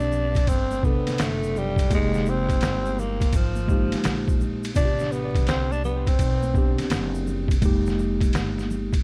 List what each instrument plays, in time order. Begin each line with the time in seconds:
Already playing: upright bass B1, tine electric piano B3 C4 D4 G4, tenor saxophone D4
0.00 high conga, shaker
0.12 low conga, shaker
0.35 kick, ride, shaker
0.47 upright bass G1, tenor saxophone C4, kick, ride, shaker
0.71 high conga, shaker
0.82 tine electric piano C3 B3 D4 A4, tenor saxophone B3, kick, high conga, shaker
1.07 muted upright bass stroke, snare, ride, high conga, shaker
1.18 upright bass F#1, tenor saxophone A3, snare, hi-hat pedal, ride, high conga, shaker
1.43 shaker
1.56 tenor saxophone G3, low conga, shaker
1.76 kick, ride, shaker
1.89 upright bass F1, tine electric piano G#3 A#3 D#4 G4, kick, ride, shaker
1.94 tenor saxophone G#3
2.14 snare, shaker
2.26 tenor saxophone C4, shaker
2.49 kick, ride, shaker
2.61 upright bass G1, snare, hi-hat pedal, ride, shaker
2.86 high conga, shaker
2.99 tenor saxophone A#3, low conga, shaker
3.21 kick, ride, shaker
3.33 upright bass G#1, tenor saxophone F3, kick, ride, shaker
3.55 high conga, shaker
3.67 tine electric piano G#3 A#3 D#4 G4, kick, high conga, shaker
3.92 muted upright bass stroke, snare, ride, high conga, shaker
4.04 upright bass A#1, snare, hi-hat pedal, ride, high conga, shaker
4.28 kick, shaker
4.41 low conga, shaker
4.64 ride, shaker
4.75 upright bass A1, tine electric piano C3 B3 D4 F4, tenor saxophone D4, kick, ride, shaker
4.85 tine electric piano G4
4.99 snare, shaker
5.11 tenor saxophone B3, shaker
5.35 kick, ride, shaker
5.47 upright bass C2, tenor saxophone C4, snare, hi-hat pedal, ride, shaker
5.72 tenor saxophone D4, high conga, shaker
5.84 tenor saxophone B3, low conga, shaker
6.07 tenor saxophone C4, kick, ride, shaker
6.19 upright bass B1, kick, ride, shaker
6.42 high conga, shaker
6.54 tine electric piano B3 C4 D4, kick, high conga, shaker
6.58 tine electric piano G4
6.78 muted upright bass stroke, snare, ride, high conga, shaker
6.90 upright bass F#1, snare, hi-hat pedal, ride, high conga, shaker
7.14 shaker
7.27 low conga, shaker
7.48 kick, ride, shaker
7.61 upright bass F1, tine electric piano G#3 A#3 D#4 G4, kick, ride, shaker
7.86 snare, shaker
7.99 low conga, shaker
8.21 kick, ride, shaker
8.33 upright bass G1, snare, hi-hat pedal, ride, shaker
8.58 snare, high conga, shaker
8.71 low conga, shaker
8.93 kick, ride, shaker